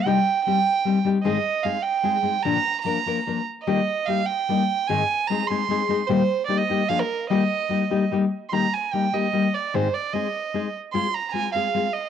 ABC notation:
X:1
M:3/4
L:1/16
Q:1/4=149
K:Eb
V:1 name="Violin"
g4 g6 z2 | e4 f2 g6 | b4 b6 z2 | e4 f2 g6 |
a4 b2 c'6 | c4 d e3 f B3 | e8 z3 z/2 c'/2 | b2 a2 g2 e4 d2 |
c2 d2 e6 z2 | c'2 b3/2 b/2 a2 f4 e2 |]
V:2 name="Nylon-string guitar"
[C,G,CEG]2 z2 [G,CEG]2 z2 [G,CEG]2 [G,CEG]2 | [A,,E,A,CEA]2 z2 [A,CEA]2 z2 [A,CEA]2 [A,CEA]2 | [B,,D,F,B,DB]2 z2 [F,B,DB]2 [F,B,DB]2 [F,B,DB]2 z2 | [E,G,B,EG]2 z2 [G,B,EG]2 z2 [G,B,EG]2 z2 |
[A,,E,A,CEA]2 z2 [A,CEA]2 [A,CEA]2 [A,CEA]2 [A,CEA]2 | [B,,E,G,B,EG]2 z2 [G,B,EG]2 [G,B,EG]2 [F,B,DA]2 z2 | [E,G,B,EG]2 z2 [G,B,EG]2 [G,B,EG]2 [G,B,EG]2 z2 | [E,G,B,EG]2 z2 [G,B,EG]2 [G,B,EG]2 [G,B,EG]2 z2 |
[A,,E,A,CEA]2 z2 [A,CEA]2 z2 [A,CEA]2 z2 | [A,CFA]2 z2 [A,CFA]2 [A,CFA]2 [A,CFA]2 z2 |]